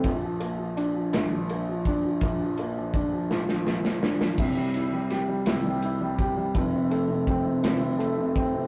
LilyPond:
<<
  \new Staff \with { instrumentName = "Upright piano" } { \clef bass \time 6/8 \key bes \lydian \tempo 4. = 55 <bes,, bes,>16 f16 bes16 f16 d'16 f16 <bes,, bes,>16 f16 bes16 f16 d'16 f16 | <bes,, bes,>16 f16 bes16 f16 d'16 f16 <bes,, bes,>16 f16 bes16 f16 d'16 f16 | <c, c>16 g16 e'16 g16 g'16 g16 <c, c>16 g16 e'16 g16 g'16 g16 | <f,, f,>16 c16 a16 c16 c'16 c16 <f,, f,>16 c16 a16 c16 c'16 c16 | }
  \new DrumStaff \with { instrumentName = "Drums" } \drummode { \time 6/8 <bd cymr>8 cymr8 cymr8 <cymr sn>8 cymr8 <bd cymr>8 | <bd cymr>8 cymr8 <bd cymr>8 sn16 sn16 sn16 sn16 sn16 sn16 | <cymc bd>8 cymr8 <cymr sn>8 <cymr sn>8 cymr8 <bd cymr>8 | <bd cymr>8 cymr8 <bd cymr>8 <cymr sn>8 cymr8 <bd cymr>8 | }
>>